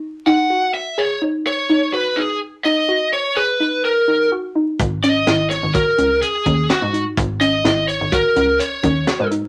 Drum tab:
HH |----------|----------|xxxxxxxxxx|xxxxxxxxxx|
SD |----------|----------|--oo----o-|--o-----o-|
BD |----------|----------|o---o--o--|o---o--o--|